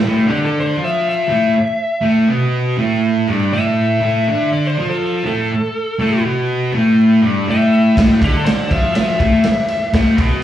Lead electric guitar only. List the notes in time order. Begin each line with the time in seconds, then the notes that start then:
0.30 G4
0.45 A4
0.60 C5
0.84 E5
1.09 E5
3.53 E5
4.53 D5
4.67 C5
4.90 A4
5.28 A4
7.50 E5
8.24 G4
8.37 A4
8.46 C5
8.72 E5
8.96 E5